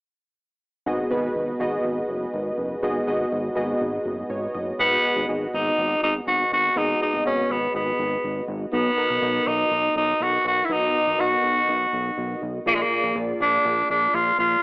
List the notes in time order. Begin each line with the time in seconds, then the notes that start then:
0.86 G#1 G#2 B3 F#4 G#4 D#5
1.10 G#1 B3 F#4 G#4 B4
1.35 G#1
1.60 G#1 B3 F#4 G#4 D#5
1.85 G#1
2.09 F#1
2.34 G#1
2.58 F#1
2.83 G#1 G#2 B3 F#4 G#4 D#5
3.07 G#1 B3 F#4 G#4 D#5
3.32 G#1
3.55 G#1 B3 F#4 G#4 D#5
3.81 G#1
4.06 F#1
4.30 G#1 C#5
4.54 F#1 D#5
4.79 G#1 G#2 B3 F#4 G#4 D#5
5.04 B3 F#4 G#4 F#5
5.16 G#1
5.28 G#1 B3 F#4 G#4 D#5
5.54 G#1 D#4
5.78 G#1
6.03 G#1 D#4
6.27 G#1 F#4
6.52 G#1 F#4
6.76 G#1 G#2 B3 D#4 F#4 G#4 D#5
7.01 B3 D#4 F#4 G#4 D#5
7.14 G#1
7.25 G#1 B3 C#4 F#4 G#4 D#5
7.50 G#1 B3
7.74 G#1 B3
7.99 G#1
8.24 G#1
8.48 G#1
8.72 B1 B2 B3 D#4 F#4 D#5
8.97 B3 D#4 F#4 A#4
9.10 B1
9.22 B1 B3 D#4 F#4 D#5
9.47 B1 D#4
9.72 B1
9.96 B1 D#4
10.21 B1 F#4
10.45 B1 F#4
10.65 E4
10.70 B1 B2 B3 D#4 F#4 D#5
10.94 B3 D#4 F#4 D#5
11.07 B1
11.18 B1 B3 D#4 F#4 D#5
11.43 B1
11.69 B1
11.93 B1
12.18 B1
12.42 B1
12.66 A#1 A#2 A#3 F4 G#4 D5
12.75 G#3
12.82 A#3
12.90 A#3 F4 G#4 D5
13.03 A#1
13.15 A#1 A#3 F4 G#4 D5
13.40 A#1 D4
13.65 A#1
13.90 A#1 D4
14.14 A#1 F4
14.39 A#1 F4